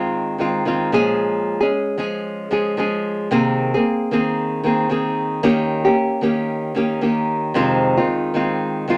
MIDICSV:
0, 0, Header, 1, 2, 480
1, 0, Start_track
1, 0, Key_signature, -4, "minor"
1, 0, Tempo, 530035
1, 1087, Time_signature, 4, 2, 24, 8
1, 8128, End_track
2, 0, Start_track
2, 0, Title_t, "Nylon-string guitar"
2, 0, Program_c, 0, 24
2, 0, Note_on_c, 0, 51, 49
2, 0, Note_on_c, 0, 56, 54
2, 0, Note_on_c, 0, 60, 64
2, 0, Note_on_c, 0, 65, 54
2, 337, Note_off_c, 0, 51, 0
2, 348, Note_on_c, 0, 51, 48
2, 355, Note_off_c, 0, 56, 0
2, 355, Note_off_c, 0, 60, 0
2, 358, Note_on_c, 0, 56, 52
2, 365, Note_on_c, 0, 60, 55
2, 367, Note_off_c, 0, 65, 0
2, 371, Note_on_c, 0, 65, 60
2, 580, Note_off_c, 0, 51, 0
2, 587, Note_off_c, 0, 56, 0
2, 591, Note_on_c, 0, 51, 53
2, 596, Note_off_c, 0, 60, 0
2, 598, Note_on_c, 0, 56, 55
2, 602, Note_off_c, 0, 65, 0
2, 606, Note_on_c, 0, 60, 52
2, 613, Note_on_c, 0, 65, 55
2, 834, Note_off_c, 0, 51, 0
2, 836, Note_off_c, 0, 56, 0
2, 836, Note_on_c, 0, 46, 62
2, 838, Note_on_c, 0, 53, 64
2, 843, Note_off_c, 0, 60, 0
2, 847, Note_on_c, 0, 56, 65
2, 847, Note_on_c, 0, 61, 67
2, 849, Note_off_c, 0, 65, 0
2, 853, Note_on_c, 0, 68, 80
2, 1450, Note_off_c, 0, 68, 0
2, 1454, Note_on_c, 0, 68, 54
2, 1461, Note_off_c, 0, 61, 0
2, 1466, Note_off_c, 0, 46, 0
2, 1467, Note_off_c, 0, 53, 0
2, 1472, Note_off_c, 0, 56, 0
2, 1472, Note_on_c, 0, 61, 46
2, 1476, Note_on_c, 0, 56, 44
2, 1784, Note_off_c, 0, 56, 0
2, 1790, Note_on_c, 0, 53, 47
2, 1791, Note_off_c, 0, 61, 0
2, 1795, Note_on_c, 0, 56, 56
2, 1799, Note_off_c, 0, 68, 0
2, 1802, Note_on_c, 0, 61, 57
2, 1808, Note_on_c, 0, 68, 67
2, 2259, Note_off_c, 0, 53, 0
2, 2270, Note_on_c, 0, 53, 52
2, 2271, Note_off_c, 0, 56, 0
2, 2272, Note_off_c, 0, 61, 0
2, 2274, Note_on_c, 0, 56, 57
2, 2283, Note_on_c, 0, 61, 56
2, 2286, Note_off_c, 0, 68, 0
2, 2289, Note_on_c, 0, 68, 59
2, 2499, Note_off_c, 0, 53, 0
2, 2508, Note_off_c, 0, 56, 0
2, 2509, Note_on_c, 0, 53, 53
2, 2513, Note_off_c, 0, 61, 0
2, 2518, Note_on_c, 0, 56, 57
2, 2522, Note_off_c, 0, 68, 0
2, 2523, Note_on_c, 0, 61, 53
2, 2532, Note_on_c, 0, 68, 63
2, 2995, Note_off_c, 0, 53, 0
2, 2996, Note_on_c, 0, 48, 65
2, 2998, Note_on_c, 0, 51, 66
2, 2999, Note_off_c, 0, 56, 0
2, 3003, Note_on_c, 0, 58, 78
2, 3005, Note_off_c, 0, 61, 0
2, 3006, Note_off_c, 0, 68, 0
2, 3008, Note_on_c, 0, 60, 80
2, 3010, Note_on_c, 0, 68, 80
2, 3377, Note_off_c, 0, 68, 0
2, 3386, Note_off_c, 0, 48, 0
2, 3386, Note_off_c, 0, 60, 0
2, 3387, Note_off_c, 0, 51, 0
2, 3388, Note_on_c, 0, 68, 51
2, 3390, Note_off_c, 0, 58, 0
2, 3397, Note_on_c, 0, 60, 42
2, 3411, Note_on_c, 0, 58, 43
2, 3719, Note_off_c, 0, 58, 0
2, 3724, Note_on_c, 0, 51, 51
2, 3726, Note_off_c, 0, 68, 0
2, 3728, Note_off_c, 0, 60, 0
2, 3730, Note_on_c, 0, 58, 56
2, 3739, Note_on_c, 0, 60, 59
2, 3745, Note_on_c, 0, 68, 58
2, 4194, Note_off_c, 0, 51, 0
2, 4198, Note_on_c, 0, 51, 54
2, 4203, Note_off_c, 0, 58, 0
2, 4206, Note_off_c, 0, 60, 0
2, 4207, Note_on_c, 0, 58, 51
2, 4213, Note_off_c, 0, 68, 0
2, 4217, Note_on_c, 0, 60, 67
2, 4224, Note_on_c, 0, 68, 57
2, 4422, Note_off_c, 0, 51, 0
2, 4433, Note_on_c, 0, 51, 53
2, 4434, Note_off_c, 0, 58, 0
2, 4435, Note_off_c, 0, 60, 0
2, 4442, Note_off_c, 0, 68, 0
2, 4445, Note_on_c, 0, 58, 53
2, 4446, Note_on_c, 0, 60, 52
2, 4453, Note_on_c, 0, 68, 61
2, 4914, Note_off_c, 0, 51, 0
2, 4916, Note_off_c, 0, 58, 0
2, 4918, Note_on_c, 0, 51, 82
2, 4919, Note_on_c, 0, 58, 86
2, 4922, Note_off_c, 0, 60, 0
2, 4925, Note_on_c, 0, 61, 79
2, 4927, Note_off_c, 0, 68, 0
2, 4931, Note_on_c, 0, 67, 81
2, 5283, Note_off_c, 0, 67, 0
2, 5293, Note_off_c, 0, 61, 0
2, 5294, Note_on_c, 0, 67, 54
2, 5303, Note_off_c, 0, 58, 0
2, 5304, Note_on_c, 0, 61, 47
2, 5307, Note_off_c, 0, 51, 0
2, 5314, Note_on_c, 0, 58, 45
2, 5627, Note_on_c, 0, 51, 53
2, 5628, Note_off_c, 0, 58, 0
2, 5632, Note_off_c, 0, 61, 0
2, 5635, Note_off_c, 0, 67, 0
2, 5639, Note_on_c, 0, 58, 60
2, 5643, Note_on_c, 0, 61, 57
2, 5646, Note_on_c, 0, 67, 64
2, 6106, Note_off_c, 0, 51, 0
2, 6109, Note_on_c, 0, 51, 49
2, 6110, Note_off_c, 0, 58, 0
2, 6113, Note_off_c, 0, 61, 0
2, 6121, Note_on_c, 0, 58, 51
2, 6122, Note_off_c, 0, 67, 0
2, 6124, Note_on_c, 0, 61, 59
2, 6132, Note_on_c, 0, 67, 61
2, 6341, Note_off_c, 0, 51, 0
2, 6344, Note_off_c, 0, 58, 0
2, 6352, Note_on_c, 0, 51, 54
2, 6355, Note_off_c, 0, 61, 0
2, 6355, Note_on_c, 0, 58, 60
2, 6359, Note_off_c, 0, 67, 0
2, 6366, Note_on_c, 0, 61, 52
2, 6370, Note_on_c, 0, 67, 52
2, 6828, Note_off_c, 0, 51, 0
2, 6830, Note_on_c, 0, 41, 73
2, 6837, Note_on_c, 0, 48, 68
2, 6838, Note_off_c, 0, 58, 0
2, 6838, Note_on_c, 0, 51, 70
2, 6839, Note_off_c, 0, 61, 0
2, 6842, Note_on_c, 0, 56, 75
2, 6843, Note_on_c, 0, 60, 77
2, 6845, Note_off_c, 0, 67, 0
2, 6849, Note_on_c, 0, 65, 84
2, 7209, Note_off_c, 0, 65, 0
2, 7217, Note_off_c, 0, 60, 0
2, 7220, Note_on_c, 0, 65, 54
2, 7223, Note_off_c, 0, 41, 0
2, 7223, Note_off_c, 0, 56, 0
2, 7226, Note_off_c, 0, 48, 0
2, 7227, Note_off_c, 0, 51, 0
2, 7227, Note_on_c, 0, 60, 44
2, 7234, Note_on_c, 0, 56, 45
2, 7240, Note_on_c, 0, 51, 40
2, 7540, Note_off_c, 0, 51, 0
2, 7551, Note_on_c, 0, 51, 51
2, 7552, Note_off_c, 0, 56, 0
2, 7559, Note_off_c, 0, 60, 0
2, 7561, Note_off_c, 0, 65, 0
2, 7562, Note_on_c, 0, 56, 59
2, 7570, Note_on_c, 0, 60, 55
2, 7574, Note_on_c, 0, 65, 53
2, 8028, Note_off_c, 0, 51, 0
2, 8038, Note_on_c, 0, 51, 56
2, 8043, Note_off_c, 0, 56, 0
2, 8046, Note_off_c, 0, 60, 0
2, 8047, Note_on_c, 0, 56, 59
2, 8057, Note_off_c, 0, 65, 0
2, 8057, Note_on_c, 0, 60, 59
2, 8061, Note_on_c, 0, 65, 62
2, 8128, Note_off_c, 0, 51, 0
2, 8128, Note_off_c, 0, 56, 0
2, 8128, Note_off_c, 0, 60, 0
2, 8128, Note_off_c, 0, 65, 0
2, 8128, End_track
0, 0, End_of_file